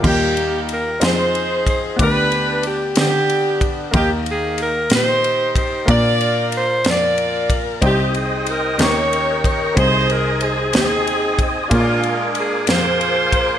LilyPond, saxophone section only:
\new Staff \with { instrumentName = "Saxophone section" } { \time 6/8 \key ees \major \tempo 4. = 62 << { g'4 bes'8 c''4 c''8 | b'4 g'8 g'4 r8 | g'8 aes'8 bes'8 c''4 c''8 | d''4 c''8 d''4 r8 |
g'8 aes'8 bes'8 des''4 des''8 | c''8 bes'8 aes'8 aes'4 r8 | f'4 aes'8 c''4. | } \\ { <bes ees'>4. <ees' aes'>4. | <d' g'>4. <b d'>4. | <bes ees'>4. <ees' g'>4. | <f' bes'>4. <f' bes'>4. |
<c' ees'>4. <g' bes'>4. | <ees' aes'>4. <c' ees'>4. | <aes d'>4. <f' aes'>4. | } >> }